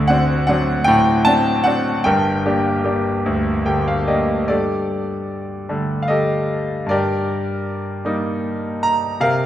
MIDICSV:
0, 0, Header, 1, 2, 480
1, 0, Start_track
1, 0, Key_signature, -2, "minor"
1, 0, Tempo, 785340
1, 1253, Time_signature, 6, 3, 24, 8
1, 1741, Tempo, 817439
1, 3181, Tempo, 796813
1, 4141, Tempo, 771208
1, 5737, End_track
2, 0, Start_track
2, 0, Title_t, "Grand piano"
2, 0, Program_c, 0, 0
2, 0, Control_c, 0, 64, 127
2, 0, Note_on_c, 0, 38, 61
2, 0, Note_on_c, 0, 50, 67
2, 46, Note_on_c, 0, 78, 89
2, 60, Note_on_c, 0, 60, 56
2, 60, Note_on_c, 0, 62, 54
2, 62, Note_on_c, 0, 66, 64
2, 277, Note_off_c, 0, 78, 0
2, 286, Note_on_c, 0, 78, 86
2, 288, Note_off_c, 0, 60, 0
2, 289, Note_off_c, 0, 62, 0
2, 297, Note_on_c, 0, 60, 53
2, 298, Note_on_c, 0, 62, 50
2, 302, Note_on_c, 0, 54, 62
2, 441, Note_off_c, 0, 66, 0
2, 516, Note_on_c, 0, 79, 105
2, 536, Note_on_c, 0, 45, 83
2, 537, Note_off_c, 0, 78, 0
2, 679, Note_off_c, 0, 60, 0
2, 679, Note_off_c, 0, 62, 0
2, 682, Note_off_c, 0, 54, 0
2, 747, Note_off_c, 0, 79, 0
2, 762, Note_on_c, 0, 81, 95
2, 774, Note_on_c, 0, 60, 50
2, 777, Note_on_c, 0, 66, 51
2, 778, Note_on_c, 0, 62, 47
2, 1000, Note_on_c, 0, 78, 89
2, 1004, Note_off_c, 0, 60, 0
2, 1008, Note_off_c, 0, 62, 0
2, 1013, Note_off_c, 0, 66, 0
2, 1013, Note_on_c, 0, 60, 49
2, 1015, Note_off_c, 0, 81, 0
2, 1018, Note_on_c, 0, 62, 46
2, 1023, Note_on_c, 0, 66, 57
2, 1205, Note_off_c, 0, 60, 0
2, 1208, Note_off_c, 0, 62, 0
2, 1211, Note_off_c, 0, 66, 0
2, 1231, Note_off_c, 0, 50, 0
2, 1232, Note_off_c, 0, 38, 0
2, 1232, Note_off_c, 0, 45, 0
2, 1247, Note_on_c, 0, 79, 87
2, 1254, Note_off_c, 0, 78, 0
2, 1257, Note_on_c, 0, 31, 61
2, 1257, Note_on_c, 0, 43, 64
2, 1260, Note_on_c, 0, 70, 59
2, 1261, Control_c, 0, 64, 0
2, 1352, Control_c, 0, 64, 127
2, 1501, Note_on_c, 0, 58, 49
2, 1502, Note_on_c, 0, 62, 49
2, 1503, Note_on_c, 0, 67, 57
2, 1727, Note_off_c, 0, 58, 0
2, 1731, Note_off_c, 0, 62, 0
2, 1731, Note_off_c, 0, 67, 0
2, 1736, Note_on_c, 0, 58, 42
2, 1740, Note_on_c, 0, 67, 47
2, 1741, Note_on_c, 0, 62, 41
2, 1981, Note_on_c, 0, 38, 60
2, 2124, Note_off_c, 0, 58, 0
2, 2126, Note_off_c, 0, 67, 0
2, 2127, Note_off_c, 0, 62, 0
2, 2207, Note_off_c, 0, 79, 0
2, 2215, Note_on_c, 0, 58, 36
2, 2216, Note_on_c, 0, 79, 53
2, 2221, Note_on_c, 0, 50, 34
2, 2222, Note_on_c, 0, 67, 41
2, 2332, Note_off_c, 0, 79, 0
2, 2344, Note_on_c, 0, 77, 54
2, 2444, Note_off_c, 0, 70, 0
2, 2453, Note_off_c, 0, 58, 0
2, 2455, Note_off_c, 0, 67, 0
2, 2456, Note_off_c, 0, 77, 0
2, 2460, Note_on_c, 0, 74, 35
2, 2461, Note_on_c, 0, 75, 53
2, 2462, Note_on_c, 0, 58, 37
2, 2464, Note_on_c, 0, 67, 44
2, 2607, Note_off_c, 0, 50, 0
2, 2654, Note_off_c, 0, 74, 0
2, 2655, Note_off_c, 0, 58, 0
2, 2656, Note_off_c, 0, 67, 0
2, 2683, Note_off_c, 0, 31, 0
2, 2683, Note_off_c, 0, 38, 0
2, 2683, Note_off_c, 0, 43, 0
2, 2686, Note_off_c, 0, 75, 0
2, 2697, Note_on_c, 0, 43, 45
2, 2699, Note_on_c, 0, 74, 65
2, 2706, Note_on_c, 0, 69, 41
2, 2710, Note_on_c, 0, 67, 44
2, 2712, Control_c, 0, 64, 0
2, 2818, Control_c, 0, 64, 127
2, 3415, Note_on_c, 0, 57, 35
2, 3416, Note_on_c, 0, 55, 39
2, 3418, Note_on_c, 0, 50, 45
2, 3599, Note_off_c, 0, 69, 0
2, 3601, Note_off_c, 0, 67, 0
2, 3617, Note_on_c, 0, 77, 53
2, 3647, Note_off_c, 0, 74, 0
2, 3649, Note_on_c, 0, 75, 64
2, 3660, Note_on_c, 0, 69, 48
2, 3662, Note_off_c, 0, 77, 0
2, 3662, Note_on_c, 0, 67, 47
2, 4113, Note_off_c, 0, 43, 0
2, 4115, Note_off_c, 0, 57, 0
2, 4115, Note_off_c, 0, 69, 0
2, 4116, Note_off_c, 0, 55, 0
2, 4116, Note_off_c, 0, 67, 0
2, 4117, Note_off_c, 0, 50, 0
2, 4123, Note_on_c, 0, 43, 52
2, 4138, Note_on_c, 0, 74, 75
2, 4148, Note_off_c, 0, 75, 0
2, 4148, Control_c, 0, 64, 0
2, 4148, Note_on_c, 0, 70, 55
2, 4152, Note_on_c, 0, 67, 57
2, 4268, Control_c, 0, 64, 127
2, 4859, Note_on_c, 0, 55, 43
2, 4864, Note_on_c, 0, 58, 40
2, 4865, Note_on_c, 0, 63, 53
2, 5328, Note_off_c, 0, 70, 0
2, 5330, Note_off_c, 0, 67, 0
2, 5345, Note_on_c, 0, 82, 93
2, 5384, Note_off_c, 0, 74, 0
2, 5550, Note_off_c, 0, 43, 0
2, 5557, Note_off_c, 0, 55, 0
2, 5559, Note_off_c, 0, 58, 0
2, 5559, Note_off_c, 0, 63, 0
2, 5578, Note_on_c, 0, 48, 62
2, 5582, Note_on_c, 0, 77, 86
2, 5589, Note_off_c, 0, 82, 0
2, 5592, Control_c, 0, 64, 0
2, 5593, Note_on_c, 0, 70, 60
2, 5687, Control_c, 0, 64, 127
2, 5737, Note_off_c, 0, 48, 0
2, 5737, Note_off_c, 0, 70, 0
2, 5737, Note_off_c, 0, 77, 0
2, 5737, End_track
0, 0, End_of_file